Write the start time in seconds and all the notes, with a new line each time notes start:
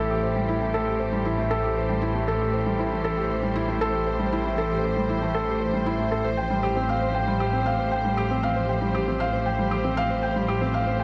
Already playing: A1 A2 E3 G3 A3 E4 G4 A4 C5
0.10 G4
0.23 C5
0.36 G3
0.49 E4
0.61 A3
0.74 A4
0.87 G4
1.00 C5
1.12 G3
1.25 E4
1.38 A3
1.51 A4
1.63 G4
1.76 C5
1.89 G3
2.02 E4
2.15 A3
2.28 A4
2.41 G4
2.54 C5
2.66 G3
2.79 E4
2.92 A3
3.04 A4
3.17 G4
3.30 C5
3.43 G3
3.55 E4
3.68 A3
3.81 A4
3.94 G4
4.07 C5
4.19 G3
4.32 E4
4.45 A3
4.58 A4
4.71 G4
4.84 C5
4.96 G3
5.09 E4
5.22 A3
5.35 A4
5.48 G4
5.61 C5
5.73 G3
5.86 E4
5.99 A3
6.12 A4
6.24 A1 C5
6.33 F3
6.37 G5
6.50 G3
6.63 G4
6.76 C4
6.83 G4
6.89 F5
7.02 C5
7.14 G5
7.28 G3
7.40 G4
7.53 C4
7.66 F5
7.79 C5
7.92 G5
8.05 G3
8.17 G4
8.31 C4
8.43 F5
8.56 C5
8.69 G5
8.82 G3
8.95 G4
9.07 C4
9.20 F5
9.33 C5
9.46 G5
9.59 G3
9.71 G4
9.84 C4
9.97 F5
10.10 C5
10.23 G5
10.36 G3
10.48 G4
10.61 C4
10.74 F5
10.87 C5
11.00 G5